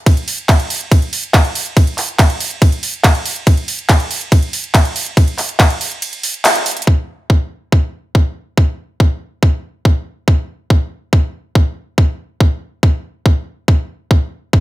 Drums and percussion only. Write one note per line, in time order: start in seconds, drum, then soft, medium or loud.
0.06 kick loud
0.06 closed hi-hat medium
0.06 ride medium
0.17 closed hi-hat medium
0.28 open hi-hat loud
0.38 closed hi-hat medium
0.49 kick loud
0.49 clap loud
0.49 closed hi-hat medium
0.49 ride medium
0.60 closed hi-hat medium
0.70 open hi-hat loud
0.81 closed hi-hat medium
0.92 kick loud
0.92 closed hi-hat medium
0.92 ride medium
1.02 closed hi-hat soft
1.13 open hi-hat loud
1.23 closed hi-hat medium
1.34 kick loud
1.34 clap loud
1.34 closed hi-hat medium
1.34 ride medium
1.45 closed hi-hat medium
1.55 open hi-hat loud
1.66 closed hi-hat soft
1.77 kick loud
1.77 closed hi-hat medium
1.77 ride medium
1.87 closed hi-hat medium
1.98 clap soft
1.98 open hi-hat loud
2.09 closed hi-hat medium
2.19 kick loud
2.19 clap loud
2.19 closed hi-hat medium
2.19 ride medium
2.30 closed hi-hat medium
2.40 open hi-hat loud
2.62 kick loud
2.62 closed hi-hat medium
2.62 ride medium
2.72 closed hi-hat medium
2.83 open hi-hat loud
2.94 closed hi-hat medium
3.04 kick loud
3.04 clap loud
3.04 closed hi-hat medium
3.04 ride medium
3.15 closed hi-hat medium
3.25 open hi-hat loud
3.36 closed hi-hat medium
3.47 kick loud
3.47 closed hi-hat medium
3.47 ride medium
3.57 closed hi-hat medium
3.68 open hi-hat loud
3.79 closed hi-hat medium
3.89 kick loud
3.89 clap loud
3.89 closed hi-hat medium
3.89 ride medium
4.00 closed hi-hat medium
4.11 open hi-hat loud
4.21 closed hi-hat medium
4.32 kick loud
4.32 closed hi-hat medium
4.32 ride medium
4.43 closed hi-hat medium
4.53 open hi-hat loud
4.64 closed hi-hat medium
4.74 kick loud
4.74 clap loud
4.74 closed hi-hat medium
4.74 ride medium
4.85 closed hi-hat medium
4.96 open hi-hat loud
5.06 closed hi-hat medium
5.17 kick loud
5.17 closed hi-hat medium
5.17 ride medium
5.28 closed hi-hat medium
5.38 clap soft
5.38 open hi-hat loud
5.49 closed hi-hat medium
5.60 kick loud
5.60 clap loud
5.60 closed hi-hat medium
5.60 ride medium
5.70 closed hi-hat medium
5.81 open hi-hat loud
5.92 closed hi-hat medium
6.02 closed hi-hat medium
6.02 ride medium
6.13 closed hi-hat medium
6.23 open hi-hat loud
6.34 closed hi-hat medium
6.45 clap loud
6.45 open hi-hat medium
6.45 ride medium
6.55 closed hi-hat medium
6.66 closed hi-hat medium
6.66 open hi-hat loud
6.77 closed hi-hat medium
6.82 closed hi-hat medium
6.87 kick loud
7.30 kick loud
7.72 kick loud
8.15 kick loud
8.57 kick loud
9.00 kick loud
9.43 kick loud
9.85 kick loud
10.28 kick loud
10.70 kick loud
11.13 kick loud
11.55 kick loud
11.98 kick loud
12.40 kick loud
12.83 kick loud
13.26 kick loud
13.68 kick loud
14.11 kick loud
14.53 kick loud